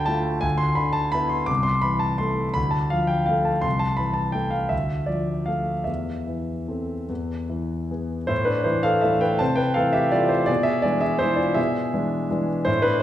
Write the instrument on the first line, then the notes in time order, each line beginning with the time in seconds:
grand piano
Already playing: D2 D3 G5 A5 B5
0.06 A3 F4 A5
0.41 D2 G#5
0.58 C6
0.75 D3 B5
0.93 A5
1.12 B3 E4 B5
1.29 C6
1.46 C2 D6
1.63 C6
1.82 E3 B5
1.99 A5
2.18 A3 A4 C6
2.54 D2 B5
2.71 A5
2.90 F3 F5
3.07 G5
3.26 A3 A4 F5
3.45 A5
3.61 C2 C6
3.79 A5
3.97 E3 B5
4.14 A5
4.32 A3 A4 G5
4.51 F5
4.69 D2 E5
5.06 F3 D5
5.46 A3 A4 F5
5.84 E2 E5
6.27 E3
6.68 C4 A4
7.09 E2
7.50 E3
7.91 B3 G#4
8.27 A2 E4 C5
8.45 D4 B4
8.64 E3 A3 E4 C5
8.83 A4 F5
9.01 E3 A3 E4 A4 E5
9.21 B4 G5
9.39 C3 C5 A5
9.56 B4 G5
9.74 E3 A3 E4 A4 F5
9.93 G4 E5
10.12 E3 A3 E4 F4 D5
10.29 E4 C5
10.46 B2 G#4 D5
10.63 G#4 E5
10.82 E3 G#3 D4 G#4 D5
11.01 G#4 E5
11.19 E3 G#3 D4 E4 C5
11.36 F4 D5
11.54 B2 G#4 E5
11.94 E3 G#3 D4
12.31 E3 G#3 D4
12.65 A2 E4 C5
12.82 D4 B4